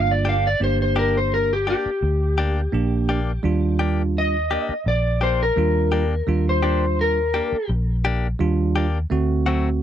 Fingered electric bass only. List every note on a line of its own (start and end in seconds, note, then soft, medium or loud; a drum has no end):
0.00 0.54 G1 loud
0.61 1.73 G1 medium
1.86 muted fingered electric bass stroke soft
2.02 2.66 D2 loud
2.73 3.37 A#1 medium
3.44 4.56 D#2 medium
4.69 muted fingered electric bass stroke soft
4.86 5.50 A#1 loud
5.57 6.21 D#2 medium
6.28 7.40 D#2 medium
7.52 muted fingered electric bass stroke soft
7.69 8.33 A#1 loud
8.40 9.04 D#2 medium
9.11 9.83 D2 loud